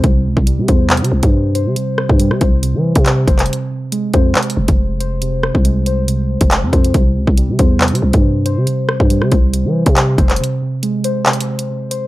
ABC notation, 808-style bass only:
X:1
M:4/4
L:1/16
Q:1/4=139
K:Cphr
V:1 name="808-style bass" clef=bass
C,,2 D,, C,,2 C, =E,,3 C, C,, G,,4 C, | z3 G,,2 C, C,,3 =E,2 C,3 F,,,2 | z6 F,,2 z2 F,,, F,,,4- F,,,- | F,,,3 C,,8 F,,,2 F,, F,,2 |
C,,2 D,, C,,2 C, =E,,3 C, C,, G,,4 C, | z3 G,,2 C, C,,3 =E,2 C,3 F,,,2 | z16 |]